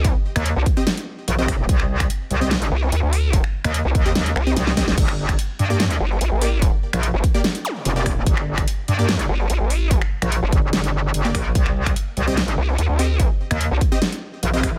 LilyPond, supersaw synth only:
\new Staff \with { instrumentName = "Supersaw synth" } { \time 4/4 \key c \dorian \tempo 4 = 146 r4. r16 <c' g' ees''>16 r4 r16 <c' g' ees''>16 r8 | r4. r16 <c' g' ees''>16 r2 | r4. r16 <c' g' ees''>16 r8. <c' g' ees''>16 r8 <c' g' ees''>16 r16 | r4. r16 <bes g' d''>16 r4. <bes g' d''>16 r16 |
r4. r16 <bes g' d''>16 r4 r16 <bes g' d''>16 r8 | r4. r16 <bes g' d''>16 r2 | r2. r16 <bes g' d''>16 r8 | r4. r16 <c' g' ees''>16 r4. <c' g' ees''>16 r16 |
r4. r16 <c' g' ees''>16 r4 r16 <c' g' ees''>16 r8 | }